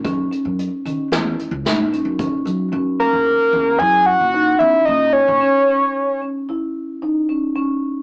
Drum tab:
HH |xxxxxxxxxx|----------|----------|
SD |----o-o---|----------|----------|
BD |o-------o-|----------|----------|